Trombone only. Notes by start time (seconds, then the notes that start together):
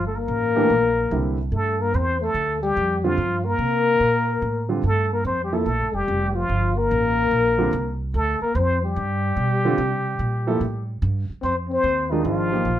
0.08 A3
0.15 A#3
1.52 A3
1.81 A#3
1.93 C4
2.21 A3
2.62 G3
3.05 F3
3.45 A#3
4.85 A3
5.12 A#3
5.25 C4
5.43 G3
5.53 A3
5.94 G3
6.34 F3
6.76 A#3
8.14 A3
8.43 A#3
8.56 C4
8.83 G3
11.41 C4
11.68 C4
12.10 D#3
12.24 F3